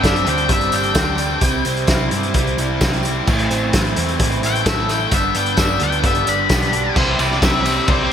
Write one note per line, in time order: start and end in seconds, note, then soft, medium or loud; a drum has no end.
0.00 0.23 G1 medium
0.00 0.73 G2 medium
0.00 0.26 D3 medium
0.00 0.26 G3 medium
0.00 0.26 C4 medium
0.00 kick medium
0.04 0.26 C4 medium
0.04 0.24 D4 medium
0.04 0.28 E5 medium
0.04 snare loud
0.04 closed hi-hat medium
0.04 tambourine medium
0.16 closed hi-hat soft
0.25 0.47 D2 medium
0.25 0.73 G2 medium
0.25 0.48 D3 medium
0.25 0.48 G3 medium
0.25 0.50 C4 medium
0.25 0.49 D4 medium
0.25 closed hi-hat medium
0.25 tambourine soft
0.29 0.51 G5 loud
0.38 closed hi-hat soft
0.49 0.69 G1 medium
0.49 0.73 D3 medium
0.49 0.72 G3 medium
0.49 0.72 C4 medium
0.49 0.71 D4 medium
0.49 0.74 E5 medium
0.49 kick loud
0.49 closed hi-hat medium
0.61 closed hi-hat soft
0.72 0.93 G1 medium
0.72 1.20 G2 medium
0.72 0.94 D3 medium
0.72 0.95 G3 medium
0.72 0.96 C4 medium
0.72 0.96 D4 medium
0.72 1.64 G5 medium
0.72 closed hi-hat medium
0.72 tambourine medium
0.83 closed hi-hat soft
0.95 1.35 D2 medium
0.95 1.40 D3 medium
0.95 1.20 G3 medium
0.95 1.19 C4 medium
0.95 1.18 D4 medium
0.95 1.42 G4 medium
0.95 kick loud
0.95 snare loud
0.95 closed hi-hat loud
0.95 tambourine medium
1.18 1.41 G3 medium
1.18 1.43 C4 medium
1.18 1.41 D4 medium
1.18 closed hi-hat medium
1.18 tambourine medium
1.41 1.62 C2 loud
1.41 1.87 C3 medium
1.41 1.66 G3 medium
1.41 1.66 C4 medium
1.41 1.65 E4 medium
1.41 kick loud
1.41 closed hi-hat loud
1.41 tambourine medium
1.65 1.85 C2 medium
1.65 1.88 G3 medium
1.65 1.90 C4 medium
1.65 1.90 E4 medium
1.65 closed hi-hat medium
1.65 tambourine medium
1.76 closed hi-hat soft
1.87 2.08 C2 medium
1.87 2.13 C3 medium
1.87 2.13 G3 medium
1.87 2.13 C4 medium
1.87 2.12 E4 medium
1.87 kick loud
1.87 snare loud
1.87 closed hi-hat medium
1.87 tambourine medium
2.11 2.31 G2 medium
2.11 2.34 C3 medium
2.11 2.34 G3 medium
2.11 2.35 C4 medium
2.11 2.36 E4 medium
2.11 closed hi-hat medium
2.11 tambourine soft
2.23 closed hi-hat soft
2.34 2.55 C2 loud
2.34 2.60 C3 medium
2.34 2.59 G3 medium
2.34 2.59 C4 medium
2.34 2.58 E4 medium
2.34 kick loud
2.34 closed hi-hat loud
2.47 closed hi-hat soft
2.58 2.78 C2 medium
2.58 2.80 C3 medium
2.58 2.80 G3 medium
2.58 2.81 C4 medium
2.58 2.82 E4 medium
2.58 closed hi-hat medium
2.58 tambourine medium
2.81 3.21 C2 medium
2.81 3.26 C3 medium
2.81 3.06 G3 medium
2.81 3.05 C4 medium
2.81 3.04 E4 medium
2.81 3.27 G4 medium
2.81 kick loud
2.81 snare loud
2.81 closed hi-hat medium
2.81 tambourine medium
2.93 snare soft
2.93 closed hi-hat soft
3.03 3.27 C4 medium
3.03 3.26 E4 medium
3.03 closed hi-hat medium
3.03 tambourine medium
3.07 3.27 G3 medium
3.27 3.47 A1 loud
3.27 3.73 A2 medium
3.27 3.73 E3 medium
3.27 3.53 A3 medium
3.27 3.51 C4 medium
3.27 3.50 E4 loud
3.27 kick loud
3.27 tambourine medium
3.27 crash loud
3.39 closed hi-hat soft
3.51 3.71 A1 medium
3.51 3.74 A3 medium
3.51 3.75 C4 medium
3.51 3.76 E4 medium
3.51 closed hi-hat medium
3.51 tambourine medium
3.73 3.94 A1 medium
3.73 3.98 E3 medium
3.73 3.98 A3 medium
3.73 3.97 C4 medium
3.73 3.97 E4 medium
3.73 kick loud
3.73 snare loud
3.73 closed hi-hat loud
3.73 tambourine medium
3.85 closed hi-hat soft
3.96 4.17 E2 medium
3.96 4.45 A2 medium
3.96 4.19 E3 medium
3.96 4.20 A3 medium
3.96 4.20 C4 medium
3.96 4.22 E4 medium
3.96 closed hi-hat medium
3.96 tambourine soft
4.08 closed hi-hat soft
4.19 4.40 A1 loud
4.19 4.44 E3 medium
4.19 4.44 A3 medium
4.19 4.43 C4 medium
4.19 4.43 E4 medium
4.19 kick loud
4.19 closed hi-hat loud
4.31 closed hi-hat soft
4.43 4.63 A1 medium
4.43 4.91 A2 medium
4.43 4.65 E3 medium
4.43 4.66 A3 medium
4.43 4.67 C4 medium
4.43 4.68 E4 loud
4.43 4.67 G5 medium
4.43 closed hi-hat medium
4.43 tambourine medium
4.55 closed hi-hat soft
4.65 5.06 A1 medium
4.65 5.11 E3 medium
4.65 4.91 A3 medium
4.65 4.90 C4 medium
4.65 4.88 E4 medium
4.65 5.12 A4 medium
4.65 4.90 E5 medium
4.65 kick loud
4.65 snare loud
4.65 closed hi-hat loud
4.65 tambourine medium
4.78 snare soft
4.89 5.12 A3 medium
4.89 5.12 C4 medium
4.89 5.11 E4 medium
4.89 5.13 G5 medium
4.89 snare soft
4.89 closed hi-hat medium
4.89 tambourine medium
5.11 5.32 G1 loud
5.11 5.58 G2 medium
5.11 5.57 D3 medium
5.11 5.37 G3 medium
5.11 5.36 B3 medium
5.11 5.35 D4 medium
5.11 5.36 E5 medium
5.11 kick loud
5.11 closed hi-hat loud
5.11 tambourine medium
5.34 5.55 G1 medium
5.34 5.58 G3 medium
5.34 5.59 B3 medium
5.34 5.59 D4 medium
5.34 5.58 G5 loud
5.34 closed hi-hat medium
5.34 tambourine medium
5.46 closed hi-hat soft
5.57 5.78 G1 medium
5.57 5.83 D3 medium
5.57 5.82 G3 medium
5.57 5.82 B3 medium
5.57 5.81 D4 medium
5.57 5.81 E5 loud
5.57 kick loud
5.57 snare loud
5.57 closed hi-hat loud
5.57 tambourine medium
5.79 6.01 D2 medium
5.79 6.04 G3 medium
5.79 6.04 B3 medium
5.79 6.05 D4 medium
5.79 closed hi-hat medium
5.83 6.29 G2 medium
5.83 6.03 D3 medium
5.83 6.05 G5 medium
5.92 closed hi-hat soft
6.03 6.24 G1 medium
6.03 6.28 D3 medium
6.03 6.28 G3 medium
6.03 6.27 B3 medium
6.03 6.27 D4 medium
6.03 6.28 E5 medium
6.03 kick loud
6.03 closed hi-hat loud
6.03 tambourine soft
6.15 closed hi-hat soft
6.27 6.47 G1 medium
6.27 6.75 G2 medium
6.27 6.49 D3 medium
6.27 6.50 G3 medium
6.27 6.51 B3 medium
6.27 6.51 D4 loud
6.27 6.95 B5 loud
6.27 closed hi-hat medium
6.27 tambourine medium
6.49 6.90 B1 medium
6.49 6.95 D3 medium
6.49 6.74 G3 medium
6.49 6.73 B3 medium
6.49 6.72 D4 medium
6.49 6.96 G4 medium
6.49 kick loud
6.49 snare loud
6.49 closed hi-hat medium
6.49 tambourine loud
6.62 snare soft
6.62 closed hi-hat soft
6.73 6.96 G3 medium
6.73 6.96 B3 medium
6.73 6.95 D4 medium
6.73 closed hi-hat medium
6.94 7.14 C2 medium
6.94 7.19 C3 medium
6.94 7.19 E3 medium
6.94 7.20 G3 medium
6.94 7.20 C4 medium
6.94 7.20 E4 loud
6.94 7.20 G4 loud
6.94 8.13 C5 medium
6.94 7.19 C5 medium
6.94 8.13 E5 medium
6.94 8.13 D6 medium
6.94 kick loud
6.94 crash loud
7.19 7.38 C2 medium
7.19 7.42 C3 medium
7.19 7.42 E3 medium
7.19 7.43 G3 medium
7.19 7.44 C4 medium
7.19 7.44 E4 loud
7.19 7.43 G4 loud
7.19 7.43 D5 medium
7.19 ride medium
7.19 tambourine medium
7.31 snare soft
7.42 7.79 C2 medium
7.42 7.65 C3 loud
7.42 7.64 E3 medium
7.42 7.66 G3 medium
7.42 7.66 C4 medium
7.42 7.67 E4 loud
7.42 7.66 G4 loud
7.42 7.91 E5 loud
7.42 kick loud
7.42 snare loud
7.42 ride loud
7.42 tambourine medium
7.65 7.88 C3 medium
7.65 7.88 E3 medium
7.65 7.89 G3 medium
7.65 7.89 C4 medium
7.65 7.89 E4 medium
7.65 7.90 G4 medium
7.65 ride medium
7.65 tambourine medium
7.88 8.07 C2 loud
7.88 8.11 C3 loud
7.88 8.11 E3 medium
7.88 8.12 G3 medium
7.88 8.12 C4 medium
7.88 8.12 E4 loud
7.88 8.13 G4 medium
7.88 8.12 C5 medium
7.88 kick loud
7.88 ride loud
7.88 tambourine soft